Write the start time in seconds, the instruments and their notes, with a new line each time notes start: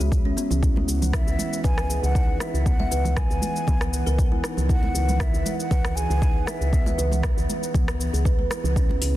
Already playing: analog synth pad C#4 G#4 E5
0.00 fm bass C#2, shaker
0.12 kick, shaker
0.25 kalimba C#4, high conga
0.37 kalimba B3, muted conga, shaker
0.50 fm bass C#2, low conga, shaker
0.63 analog synth pad E3 B4 F#5, kalimba E4, kick, shaker
0.76 muted conga, high conga
0.88 fm bass C#2, shaker
1.02 high conga, low conga, shaker
1.13 kalimba E4, flute E5, kick, cross-stick, shaker
1.27 fm bass C#2, shaker
1.39 kalimba E4, high conga, shaker
1.53 shaker
1.64 fm bass C#2, kalimba B4, flute G#5, kick, muted conga, low conga, shaker
1.78 kalimba D#5, cross-stick, shaker
1.90 kalimba G#4, shaker
2.03 fm bass C#2, flute F#5, muted conga, shaker
2.15 kalimba D#4, kick, shaker
2.40 kalimba E4, flute E5, cross-stick, muted conga, shaker
2.54 fm bass C#2, shaker
2.66 kalimba B3, flute F#5, kick, shaker
2.80 kalimba E5, muted conga, high conga
2.91 fm bass C#2, kalimba B4, shaker
3.05 high conga, low conga, shaker
3.17 flute G#5, kick, cross-stick, shaker
3.30 fm bass C#2, shaker
3.42 high conga, shaker
3.56 shaker
3.67 fm bass C#2, kalimba B3, kick, muted conga, low conga, shaker
3.81 cross-stick, shaker
3.93 shaker
4.06 fm bass C#2, kalimba A#4, muted conga, shaker
4.19 kick, shaker
4.31 kalimba E4, high conga
4.44 kalimba D#4, cross-stick, muted conga, shaker
4.57 fm bass C#2, low conga, shaker
4.69 kalimba E4, flute F#5, kick, shaker
4.83 muted conga, high conga
4.95 fm bass C#2, shaker
5.09 high conga, low conga, shaker
5.20 flute E5, kick, cross-stick, shaker
5.34 fm bass C#2, shaker
5.46 kalimba E4, high conga, shaker
5.59 flute F#5, shaker
5.71 fm bass C#2, kalimba B4, kick, muted conga, low conga, shaker
5.85 kalimba D#5, cross-stick, shaker
5.96 kalimba G#4, flute G#5, shaker
6.10 fm bass C#2, muted conga, shaker
6.22 kalimba D#4, kick, shaker
6.46 kalimba E4, flute E5, cross-stick, muted conga, shaker
6.61 fm bass C#2, shaker
6.73 kalimba B3, kick, shaker
6.86 kalimba E5, muted conga, high conga, shaker
6.98 fm bass C#2, kalimba B4, shaker
7.12 high conga, low conga, shaker
7.23 kick, cross-stick, muted conga, shaker
7.37 fm bass C#2, shaker
7.49 high conga, shaker
7.63 shaker
7.74 fm bass C#2, kalimba B3, kick, muted conga, low conga, shaker
7.88 cross-stick, shaker
8.00 kalimba B3, shaker
8.13 fm bass C#2, kalimba G#4, muted conga, shaker
8.25 kalimba B4, kick, shaker
8.39 kalimba B4, high conga
8.50 kalimba E4, cross-stick, muted conga, shaker
8.64 fm bass C#2, low conga, shaker
8.76 analog synth pad C#4 G#4 E5, kalimba C#4, kick, shaker
8.89 muted conga, high conga
9.02 fm bass C#2, open hi-hat, shaker